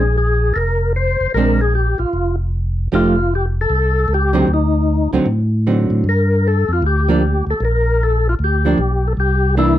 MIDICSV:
0, 0, Header, 1, 4, 480
1, 0, Start_track
1, 0, Tempo, 391389
1, 1659, Time_signature, 4, 2, 24, 8
1, 12003, End_track
2, 0, Start_track
2, 0, Title_t, "Tonewheel organ"
2, 0, Program_c, 0, 16
2, 0, Note_on_c, 0, 68, 73
2, 201, Note_off_c, 0, 68, 0
2, 216, Note_on_c, 0, 68, 82
2, 649, Note_off_c, 0, 68, 0
2, 659, Note_on_c, 0, 69, 65
2, 682, Note_on_c, 0, 70, 86
2, 710, Note_off_c, 0, 69, 0
2, 1136, Note_off_c, 0, 70, 0
2, 1179, Note_on_c, 0, 72, 90
2, 1625, Note_off_c, 0, 72, 0
2, 1648, Note_on_c, 0, 70, 89
2, 1971, Note_off_c, 0, 70, 0
2, 1977, Note_on_c, 0, 68, 71
2, 2133, Note_off_c, 0, 68, 0
2, 2147, Note_on_c, 0, 67, 81
2, 2429, Note_off_c, 0, 67, 0
2, 2442, Note_on_c, 0, 65, 71
2, 2891, Note_off_c, 0, 65, 0
2, 3618, Note_on_c, 0, 65, 82
2, 4093, Note_off_c, 0, 65, 0
2, 4112, Note_on_c, 0, 67, 93
2, 4238, Note_off_c, 0, 67, 0
2, 4429, Note_on_c, 0, 69, 117
2, 5069, Note_off_c, 0, 69, 0
2, 5080, Note_on_c, 0, 67, 89
2, 5543, Note_off_c, 0, 67, 0
2, 5563, Note_on_c, 0, 63, 77
2, 6270, Note_off_c, 0, 63, 0
2, 7467, Note_on_c, 0, 70, 93
2, 7937, Note_off_c, 0, 70, 0
2, 7943, Note_on_c, 0, 69, 92
2, 8237, Note_off_c, 0, 69, 0
2, 8251, Note_on_c, 0, 65, 85
2, 8391, Note_off_c, 0, 65, 0
2, 8419, Note_on_c, 0, 67, 86
2, 9137, Note_off_c, 0, 67, 0
2, 9203, Note_on_c, 0, 69, 88
2, 9362, Note_off_c, 0, 69, 0
2, 9379, Note_on_c, 0, 70, 91
2, 9851, Note_on_c, 0, 69, 92
2, 9852, Note_off_c, 0, 70, 0
2, 10150, Note_off_c, 0, 69, 0
2, 10170, Note_on_c, 0, 65, 76
2, 10237, Note_off_c, 0, 65, 0
2, 10352, Note_on_c, 0, 67, 83
2, 11128, Note_on_c, 0, 69, 77
2, 11134, Note_off_c, 0, 67, 0
2, 11196, Note_off_c, 0, 69, 0
2, 11281, Note_on_c, 0, 67, 87
2, 11716, Note_off_c, 0, 67, 0
2, 11757, Note_on_c, 0, 64, 88
2, 12003, Note_off_c, 0, 64, 0
2, 12003, End_track
3, 0, Start_track
3, 0, Title_t, "Hollow-body jazz guitar"
3, 0, Program_c, 1, 26
3, 1675, Note_on_c, 1, 56, 53
3, 1685, Note_on_c, 1, 60, 57
3, 1694, Note_on_c, 1, 62, 55
3, 1944, Note_off_c, 1, 56, 0
3, 1949, Note_off_c, 1, 60, 0
3, 1953, Note_off_c, 1, 62, 0
3, 3582, Note_on_c, 1, 53, 49
3, 3590, Note_on_c, 1, 57, 55
3, 3599, Note_on_c, 1, 63, 59
3, 3599, Note_on_c, 1, 67, 59
3, 3857, Note_off_c, 1, 53, 0
3, 3862, Note_off_c, 1, 57, 0
3, 3866, Note_off_c, 1, 63, 0
3, 3866, Note_off_c, 1, 67, 0
3, 5312, Note_on_c, 1, 50, 61
3, 5320, Note_on_c, 1, 54, 70
3, 5334, Note_on_c, 1, 60, 69
3, 5334, Note_on_c, 1, 63, 66
3, 5475, Note_off_c, 1, 50, 0
3, 5479, Note_off_c, 1, 54, 0
3, 5486, Note_off_c, 1, 60, 0
3, 5486, Note_off_c, 1, 63, 0
3, 6290, Note_on_c, 1, 50, 60
3, 6298, Note_on_c, 1, 54, 69
3, 6307, Note_on_c, 1, 60, 66
3, 6312, Note_on_c, 1, 63, 59
3, 6444, Note_off_c, 1, 50, 0
3, 6448, Note_off_c, 1, 54, 0
3, 6452, Note_off_c, 1, 60, 0
3, 6455, Note_off_c, 1, 63, 0
3, 6950, Note_on_c, 1, 50, 44
3, 6955, Note_on_c, 1, 54, 44
3, 6956, Note_on_c, 1, 60, 46
3, 6958, Note_on_c, 1, 63, 44
3, 7425, Note_off_c, 1, 50, 0
3, 7427, Note_off_c, 1, 54, 0
3, 7428, Note_off_c, 1, 60, 0
3, 7429, Note_off_c, 1, 63, 0
3, 8689, Note_on_c, 1, 53, 61
3, 8697, Note_on_c, 1, 58, 71
3, 8710, Note_on_c, 1, 62, 66
3, 8843, Note_off_c, 1, 53, 0
3, 8847, Note_off_c, 1, 58, 0
3, 8854, Note_off_c, 1, 62, 0
3, 10609, Note_on_c, 1, 53, 57
3, 10620, Note_on_c, 1, 58, 53
3, 10621, Note_on_c, 1, 62, 62
3, 10762, Note_off_c, 1, 53, 0
3, 10768, Note_off_c, 1, 58, 0
3, 10769, Note_off_c, 1, 62, 0
3, 11736, Note_on_c, 1, 52, 52
3, 11742, Note_on_c, 1, 58, 59
3, 11743, Note_on_c, 1, 62, 63
3, 12003, Note_off_c, 1, 52, 0
3, 12003, Note_off_c, 1, 58, 0
3, 12003, Note_off_c, 1, 62, 0
3, 12003, End_track
4, 0, Start_track
4, 0, Title_t, "Tonewheel organ"
4, 0, Program_c, 2, 16
4, 0, Note_on_c, 2, 34, 76
4, 644, Note_off_c, 2, 34, 0
4, 686, Note_on_c, 2, 29, 78
4, 1431, Note_off_c, 2, 29, 0
4, 1479, Note_on_c, 2, 29, 35
4, 1567, Note_off_c, 2, 29, 0
4, 1647, Note_on_c, 2, 34, 82
4, 2392, Note_off_c, 2, 34, 0
4, 2433, Note_on_c, 2, 34, 34
4, 2523, Note_off_c, 2, 34, 0
4, 2615, Note_on_c, 2, 29, 75
4, 3529, Note_off_c, 2, 29, 0
4, 3581, Note_on_c, 2, 29, 76
4, 4493, Note_off_c, 2, 29, 0
4, 4534, Note_on_c, 2, 36, 81
4, 4983, Note_off_c, 2, 36, 0
4, 5004, Note_on_c, 2, 37, 67
4, 5458, Note_off_c, 2, 37, 0
4, 5493, Note_on_c, 2, 38, 77
4, 6235, Note_off_c, 2, 38, 0
4, 6288, Note_on_c, 2, 38, 35
4, 6374, Note_off_c, 2, 38, 0
4, 6449, Note_on_c, 2, 45, 75
4, 7193, Note_off_c, 2, 45, 0
4, 7239, Note_on_c, 2, 45, 60
4, 7403, Note_off_c, 2, 45, 0
4, 7409, Note_on_c, 2, 43, 72
4, 8152, Note_off_c, 2, 43, 0
4, 8198, Note_on_c, 2, 41, 67
4, 8363, Note_off_c, 2, 41, 0
4, 8368, Note_on_c, 2, 38, 85
4, 9112, Note_off_c, 2, 38, 0
4, 9157, Note_on_c, 2, 38, 36
4, 9246, Note_off_c, 2, 38, 0
4, 9326, Note_on_c, 2, 34, 80
4, 10243, Note_off_c, 2, 34, 0
4, 10290, Note_on_c, 2, 38, 82
4, 10740, Note_off_c, 2, 38, 0
4, 10767, Note_on_c, 2, 35, 66
4, 11218, Note_off_c, 2, 35, 0
4, 11248, Note_on_c, 2, 36, 75
4, 12003, Note_off_c, 2, 36, 0
4, 12003, End_track
0, 0, End_of_file